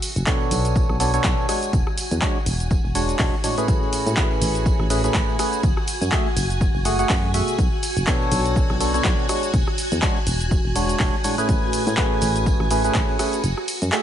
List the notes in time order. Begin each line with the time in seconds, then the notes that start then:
Already playing: F#4 G#5
0.02 open hi-hat, tambourine, shaker
0.16 F#1, closed hi-hat, tambourine, shaker
0.26 B2 B3 D4 A4 C#5, kick, clap, closed hi-hat, tambourine, shaker
0.40 tambourine
0.51 B1, open hi-hat, tambourine, shaker
0.65 closed hi-hat, tambourine, shaker
0.75 kick, tambourine, shaker
0.89 B1, cross-stick, tambourine
1.00 B2 B3 D4 A4 C#5, open hi-hat, tambourine, shaker
1.14 B2 B3 D4 A4 C#5, closed hi-hat, shaker
1.24 B1, kick, clap, closed hi-hat, tambourine, shaker
1.37 tambourine
1.49 G#3 D4 F#4 C#5, cross-stick, open hi-hat, tambourine, shaker
1.62 closed hi-hat, tambourine, shaker
1.73 E1, kick, closed hi-hat, tambourine, shaker
1.87 cross-stick, tambourine
1.98 open hi-hat, tambourine, shaker
2.11 E2, closed hi-hat, tambourine, shaker
2.22 G#3 D4 F#4 C#5, kick, clap, closed hi-hat, tambourine, shaker
2.35 tambourine
2.46 E1, open hi-hat, tambourine, shaker
2.60 closed hi-hat, tambourine, shaker
2.70 kick, tambourine, shaker
2.85 E1, tambourine
2.95 G#3 D4 F#4 C#5, open hi-hat, tambourine, shaker
3.09 closed hi-hat, tambourine, shaker
3.19 E1 G#3 D4 F#4 C#5, kick, clap, open hi-hat, tambourine, shaker
3.34 tambourine
3.44 A2 G#3 D4 F#4 C#5, open hi-hat, tambourine, shaker
3.58 A2 A3 C#4 G#4 B4, closed hi-hat, tambourine, shaker
3.68 A1, kick, closed hi-hat, tambourine, shaker
3.83 tambourine
3.92 open hi-hat, tambourine, shaker
4.06 A2, closed hi-hat, tambourine, shaker
4.17 A2 A3 C#4 G#4 B4, kick, clap, closed hi-hat, tambourine, shaker
4.31 tambourine
4.41 A1, open hi-hat, tambourine, shaker
4.55 closed hi-hat, tambourine, shaker
4.66 kick, tambourine, shaker
4.79 A1, cross-stick, tambourine
4.90 A2 A3 C#4 G#4 B4, open hi-hat, tambourine, shaker
5.04 A2 A3 C#4 G#4 B4, closed hi-hat, tambourine, shaker
5.14 A1, kick, clap, closed hi-hat, tambourine, shaker
5.29 tambourine
5.39 A3 C#4 G#4 B4, cross-stick, open hi-hat, tambourine, shaker
5.53 closed hi-hat, tambourine, shaker
5.63 F#1, kick, closed hi-hat, tambourine, shaker
5.77 cross-stick, tambourine
5.87 open hi-hat, tambourine, shaker
6.01 F#2, closed hi-hat, tambourine, shaker
6.12 A3 F#4 G#4 E5, kick, clap, closed hi-hat, tambourine, shaker
6.26 tambourine
6.37 F#1, open hi-hat, tambourine, shaker
6.50 closed hi-hat, tambourine, shaker
6.61 kick, tambourine, shaker
6.74 F#1, tambourine
6.85 A3 F#4 G#4 F#5, open hi-hat, tambourine, shaker
6.99 A3 F#4 G#4 F#5, closed hi-hat, tambourine, shaker
7.09 F#2, kick, clap, open hi-hat, tambourine, shaker
7.23 tambourine
7.34 B2 A3 F#4 G#4 E5, open hi-hat, tambourine, shaker
7.47 closed hi-hat, tambourine, shaker
7.58 B1, kick, closed hi-hat, tambourine, shaker
7.72 tambourine
7.82 open hi-hat, tambourine, shaker
7.97 F#1, closed hi-hat, tambourine, shaker
8.07 B2 B3 D4 A4 C#5, kick, clap, closed hi-hat, tambourine, shaker
8.21 tambourine
8.32 B1, open hi-hat, tambourine, shaker
8.45 closed hi-hat, tambourine, shaker
8.56 kick, tambourine, shaker
8.69 B1, cross-stick, tambourine
8.80 B2 B3 D4 A4 C#5, open hi-hat, tambourine, shaker
8.94 B2 B3 D4 A4 C#5, closed hi-hat, tambourine, shaker
9.04 B1, kick, clap, closed hi-hat, tambourine, shaker
9.19 tambourine
9.29 G#3 D4 F#4 C#5, cross-stick, open hi-hat, tambourine, shaker
9.43 closed hi-hat, tambourine, shaker
9.54 E1, kick, closed hi-hat, tambourine, shaker
9.67 cross-stick, tambourine
9.78 open hi-hat, tambourine, shaker
9.91 E2, closed hi-hat, tambourine, shaker
10.02 G#3 D4 F#4 C#5, kick, clap, closed hi-hat, tambourine, shaker
10.16 tambourine
10.27 E1, open hi-hat, tambourine, shaker
10.41 closed hi-hat, tambourine, shaker
10.51 kick, tambourine, shaker
10.65 E1, tambourine
10.76 G#3 D4 F#4 C#5, open hi-hat, tambourine, shaker
10.89 closed hi-hat, tambourine, shaker
10.99 E1 G#3 D4 F#4 C#5, kick, clap, open hi-hat, tambourine, shaker
11.13 tambourine
11.24 A2 G#3 D4 F#4 C#5, open hi-hat, tambourine, shaker
11.38 A2 A3 C#4 G#4 B4, closed hi-hat, tambourine, shaker
11.49 A1, kick, closed hi-hat, tambourine, shaker
11.62 tambourine
11.73 open hi-hat, tambourine, shaker
11.87 A2, closed hi-hat, tambourine, shaker
11.97 A2 A3 C#4 G#4 B4, kick, clap, closed hi-hat, shaker
12.12 tambourine
12.21 A1, open hi-hat, tambourine, shaker
12.36 closed hi-hat, tambourine, shaker
12.46 kick, tambourine, shaker
12.60 A1, cross-stick, tambourine
12.70 A2 A3 C#4 G#4 B4, open hi-hat, tambourine, shaker
12.84 A2 A3 C#4 G#4 B4, closed hi-hat, tambourine, shaker
12.94 A1, kick, clap, closed hi-hat, tambourine, shaker
13.09 tambourine
13.19 A3 C#4 G#4 B4, cross-stick, open hi-hat, tambourine, shaker
13.33 closed hi-hat, tambourine, shaker
13.44 F#1, closed hi-hat, tambourine, shaker
13.57 cross-stick, tambourine
13.68 open hi-hat, tambourine, shaker
13.82 F#2, closed hi-hat, tambourine, shaker
13.92 A3 F#4 G#4 E5, clap, closed hi-hat, tambourine, shaker